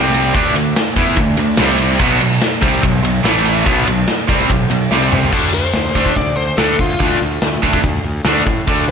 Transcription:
0.00 0.31 C2 loud
0.00 0.33 C3 medium
0.00 0.33 G3 loud
0.00 0.34 C4 medium
0.14 ride medium
0.34 0.54 D2 loud
0.34 0.54 D3 medium
0.34 0.54 A3 loud
0.34 0.55 D4 loud
0.34 kick loud
0.34 ride medium
0.54 0.74 D2 medium
0.54 0.72 D3 medium
0.54 0.72 A3 medium
0.54 snare soft
0.54 ride medium
0.76 snare loud
0.76 ride loud
0.96 1.15 E2 medium
0.96 1.16 E3 medium
0.96 1.16 B3 medium
0.96 1.17 E4 loud
0.96 kick medium
0.96 ride medium
1.16 1.36 D2 medium
1.16 1.33 D3 medium
1.16 1.34 A3 medium
1.16 kick medium
1.16 ride loud
1.37 1.57 D2 medium
1.37 1.54 D3 medium
1.37 1.55 A3 medium
1.37 ride medium
1.57 1.97 C2 loud
1.57 1.99 C3 medium
1.57 2.00 G3 medium
1.57 2.00 C4 loud
1.57 snare loud
1.57 ride loud
1.78 ride medium
1.99 2.19 B1 loud
1.99 2.19 B2 medium
1.99 2.19 F#3 loud
1.99 2.21 B3 loud
1.99 kick loud
1.99 crash loud
2.20 2.40 B1 medium
2.20 2.37 B2 medium
2.20 2.37 F#3 medium
2.20 snare soft
2.20 ride medium
2.31 snare soft
2.42 snare loud
2.42 ride loud
2.61 2.82 C2 medium
2.61 2.82 C3 loud
2.61 2.82 G3 loud
2.61 2.82 C4 loud
2.61 kick loud
2.61 ride medium
2.82 3.02 B1 medium
2.82 2.99 B2 medium
2.82 3.00 F#3 medium
2.82 kick medium
2.82 ride loud
3.02 3.22 B1 medium
3.02 3.20 B2 medium
3.02 3.20 F#3 medium
3.02 ride medium
3.23 3.62 A1 loud
3.23 3.64 A2 medium
3.23 3.65 E3 loud
3.23 3.66 A3 loud
3.23 snare loud
3.23 ride loud
3.45 ride medium
3.65 3.85 B1 medium
3.65 3.86 B2 medium
3.65 3.86 F#3 medium
3.65 3.86 B3 loud
3.65 kick loud
3.65 ride loud
3.87 4.06 B1 medium
3.87 4.03 B2 medium
3.87 4.04 F#3 medium
3.87 ride medium
4.08 snare loud
4.08 ride loud
4.28 4.48 C2 medium
4.28 4.49 C3 medium
4.28 4.49 G3 loud
4.28 4.49 C4 loud
4.28 kick loud
4.28 ride medium
4.49 4.69 B1 medium
4.49 4.66 B2 medium
4.49 4.66 F#3 medium
4.49 kick medium
4.49 ride medium
4.70 4.90 B1 medium
4.70 4.87 B2 medium
4.70 4.87 F#3 medium
4.70 ride medium
4.91 5.30 C2 medium
4.91 5.31 C3 medium
4.91 5.32 G3 loud
4.91 5.33 C4 loud
4.91 snare medium
5.12 mid tom loud
5.23 floor tom medium
5.32 5.62 D2 medium
5.32 5.49 D3 medium
5.32 5.49 A3 medium
5.32 5.49 D4 medium
5.32 kick loud
5.32 crash loud
5.54 6.15 C5 medium
5.73 5.89 D2 medium
5.73 snare loud
5.73 open hi-hat soft
5.95 6.10 D2 medium
5.95 6.12 D3 medium
5.95 6.12 A3 medium
5.95 6.13 D4 medium
5.95 kick medium
6.06 kick medium
6.16 6.31 D2 medium
6.16 6.36 D5 medium
6.16 kick medium
6.16 open hi-hat soft
6.36 6.51 D2 medium
6.36 6.57 C5 medium
6.57 6.72 D2 medium
6.57 6.75 D3 medium
6.57 6.75 A3 medium
6.57 6.75 D4 medium
6.57 6.78 A4 medium
6.57 snare loud
6.57 open hi-hat soft
6.79 6.94 D2 medium
6.79 7.20 F4 medium
6.79 kick medium
7.00 7.15 D2 medium
7.00 7.17 D3 medium
7.00 7.17 A3 medium
7.00 7.18 D4 loud
7.00 kick medium
7.00 open hi-hat medium
7.21 7.36 D2 medium
7.21 snare soft
7.42 7.57 D2 medium
7.42 snare loud
7.42 open hi-hat soft
7.63 7.78 D2 medium
7.63 7.80 D3 medium
7.63 7.80 A3 medium
7.63 7.80 D4 loud
7.63 kick medium
7.73 kick medium
7.83 7.98 D2 medium
7.83 kick medium
7.83 open hi-hat soft
8.04 8.19 D2 medium
8.25 8.40 D2 medium
8.25 8.42 D3 medium
8.25 8.42 A3 medium
8.25 8.43 D4 medium
8.25 snare loud
8.25 open hi-hat medium
8.46 8.61 A2 medium
8.46 kick medium
8.67 8.91 D2 medium
8.67 8.84 D3 medium
8.67 8.84 A3 medium
8.67 8.84 D4 medium
8.67 kick loud
8.67 open hi-hat medium

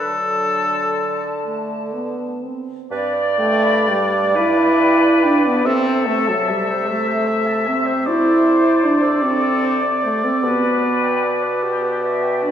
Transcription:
0.00 2.51 D3 medium
0.00 1.31 F#3 medium
0.00 2.50 D4 medium
0.00 1.45 A4 medium
0.00 2.50 A5 medium
1.44 1.94 A3 medium
1.93 2.44 B3 medium
2.43 2.91 C4 medium
2.91 5.61 G2 medium
2.91 3.16 B4 medium
2.91 4.37 D5 loud
2.91 5.67 D5 medium
3.14 3.41 D5 medium
3.39 3.91 A3 loud
3.39 3.65 G5 medium
3.64 3.90 B5 medium
3.88 4.38 G3 medium
3.88 4.14 G5 medium
4.12 4.37 D5 medium
4.35 5.26 E4 loud
4.35 4.60 B4 medium
4.35 5.67 B4 loud
4.59 4.82 D5 medium
4.80 5.04 G5 medium
5.03 5.25 B5 medium
5.23 5.48 D4 medium
5.23 5.47 G5 medium
5.45 5.65 B3 loud
5.45 5.65 D5 medium
5.65 10.12 C3 medium
5.65 6.09 C4 loud
5.65 6.88 A4 loud
5.65 5.88 A4 medium
5.65 8.08 E5 medium
5.86 6.08 C5 medium
6.07 6.30 A3 loud
6.07 6.29 E5 medium
6.28 6.50 F#3 medium
6.28 6.50 A5 medium
6.49 6.90 G3 loud
6.49 6.71 E5 medium
6.69 6.90 C5 medium
6.89 7.69 A3 loud
6.89 7.09 A4 medium
6.89 8.07 E5 loud
7.08 7.29 C5 medium
7.28 7.49 E5 medium
7.47 7.68 A5 medium
7.67 8.09 C4 loud
7.67 7.88 E5 medium
7.86 8.05 C5 medium
8.06 8.86 E4 loud
8.06 8.27 F#4 medium
8.06 9.25 C5 medium
8.06 12.51 D5 medium
8.26 8.46 A4 medium
8.45 8.66 C5 medium
8.65 8.85 D5 medium
8.83 9.24 D4 medium
8.83 9.04 C5 medium
9.03 9.23 A4 medium
9.22 9.87 C4 loud
9.22 9.44 F#4 medium
9.22 10.17 A4 medium
9.43 9.64 A4 medium
9.62 9.84 C5 medium
9.83 10.05 D5 medium
10.03 10.26 A3 loud
10.03 10.25 C5 medium
10.23 10.45 C4 loud
10.23 10.42 A4 medium
10.43 12.51 B2 medium
10.43 11.23 B3 loud
10.43 10.65 G4 medium
10.43 11.64 B4 medium
10.63 10.84 B4 medium
10.83 11.04 D5 medium
11.03 11.26 G5 medium
11.24 11.44 D5 medium
11.43 11.65 B4 medium
11.63 12.03 G4 medium
11.63 11.84 G4 medium
11.83 12.04 B4 medium
12.02 12.25 D5 medium
12.02 12.45 E5 medium
12.23 12.45 G5 medium
12.43 12.51 D4 medium
12.43 12.51 D5 medium

